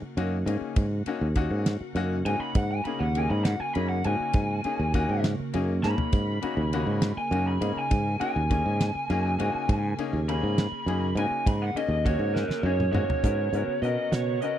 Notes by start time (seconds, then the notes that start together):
Already playing: C#3 A#3 F#4
0.02 muted fretless electric bass stroke
0.17 F#2 A#3 C#4 D#4 F#4, ride
0.46 G#2 A#3 C#4 D#4 G#4, ride
0.61 muted fretless electric bass stroke
0.76 G#2, kick, ride
1.06 A#3 C#4 D#4 F#4, muted fretless electric bass stroke, ride
1.21 D#2
1.35 A#3 C#4 D#4 F#4, kick, ride
1.51 G#2
1.66 snare, ride
1.81 muted fretless electric bass stroke
1.95 F#2 A#3 C#4 D#4 F#4, ride
2.25 G#2 A#3 C#4 D#4 F#4 G#5, ride
2.40 B5, muted fretless electric bass stroke
2.55 G#2 F#5, kick, ride
2.71 G#5
2.85 A#3 C#4 D#4 G#4 B5, muted fretless electric bass stroke, ride
2.99 D#2 F#5
3.15 A#3 C#4 D#4 G#4 G#5, ride
3.30 G#2 B5
3.45 F#5, snare, ride
3.60 G#5, muted fretless electric bass stroke
3.73 F#2 A#3 C#4 D#4 G#4 B5, ride
3.89 F#5
4.04 G#2 A#3 C#4 D#4 F#4 G#5, ride
4.20 muted fretless electric bass stroke
4.33 G#2, kick, ride
4.64 A#3 C#4 D#4 G#4, muted fretless electric bass stroke, ride
4.79 D#2
4.94 A#3 C#4 D#4 F#4, kick, ride
5.09 G#2
5.24 snare, ride
5.40 muted fretless electric bass stroke
5.53 F#2 A#3 C#4 D#4 G#4, ride
5.83 G#2 A#3 C#4 D#4 G#4 B5, snare
5.98 muted fretless electric bass stroke, floor tom
6.12 G#2 G#4, kick, ride
6.42 A#3 C#4 D#4 F#4, muted fretless electric bass stroke, ride
6.57 D#2
6.73 A#3 C#4 D#4 F#4, ride
6.87 G#2
7.02 snare, ride
7.17 G#5, muted fretless electric bass stroke
7.31 F#2 A#3 C#4 D#4 F#4, ride
7.48 B5
7.61 G#2 A#3 C#4 D#4 G#4, ride
7.76 G#5, muted fretless electric bass stroke
7.91 G#2, kick, ride
8.20 A#3 C#4 D#4 F#4 G#5, muted fretless electric bass stroke, ride
8.36 D#2
8.50 A#3 C#4 D#4 G#4, kick, ride
8.66 G#2
8.81 snare, ride
8.95 muted fretless electric bass stroke
9.10 F#2 A#3 C#4 D#4 G#4, ride
9.39 G#2 A#3 C#4 D#4 F#4, ride
9.55 muted fretless electric bass stroke
9.69 G#2, kick, ride
9.98 A#3 C#4 D#4 G#4, muted fretless electric bass stroke, ride
10.13 D#2
10.28 A#3 C#4 D#4 G#4 B5, ride
10.43 G#2
10.58 snare, ride
10.72 muted fretless electric bass stroke
10.86 F#2 A#3 C#4 D#4 G#4, ride
11.15 G#2 A#3 C#4 D#4 F#4 G#5, ride
11.30 muted fretless electric bass stroke
11.46 G#2 B5, kick, ride
11.62 F#5
11.75 A#3 C#4 D#4 G#4 D#5, muted fretless electric bass stroke, ride
11.88 D#2
12.05 A#3 C#4 D#4 F#4 C#5, kick, ride
12.19 G#2
12.34 A#4, snare
12.48 muted fretless electric bass stroke, snare
12.63 F#2 A#3 C#4 D#4 G#4 C#5
12.80 mid tom
12.93 G#2 A#3 C#4 D#4 F#4 C#5, mid tom
13.08 muted fretless electric bass stroke, floor tom
13.23 G#2 C#3 B3 C#4 F#4 A#4, kick, closed hi-hat
13.53 G#2 B3 C#4 F#4 A#4, closed hi-hat
13.68 muted fretless electric bass stroke
13.82 B2 B3 C#4 F#4 A#4 D#5, closed hi-hat
14.12 B2 C#5, snare, closed hi-hat
14.42 B3 C#4 F#4 A#4 D#5, closed hi-hat